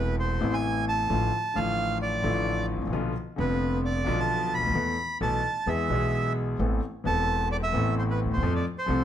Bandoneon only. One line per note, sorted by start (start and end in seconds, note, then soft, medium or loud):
0.00 0.16 B4 medium
0.19 0.54 C5 medium
0.54 0.85 G#5 medium
0.88 1.58 A5 medium
1.56 1.98 F5 medium
2.02 2.66 D5 medium
3.39 3.81 B4 medium
3.85 4.20 D5 medium
4.20 4.54 A5 medium
4.54 5.18 B5 medium
5.22 5.69 A5 medium
5.68 6.33 E5 medium
7.06 7.49 A5 medium
7.52 7.57 D5 medium
7.63 7.95 E5 medium
7.99 8.03 C5 medium
8.10 8.20 B4 medium
8.33 8.54 C5 medium
8.55 8.65 D5 medium
8.78 9.04 C5 medium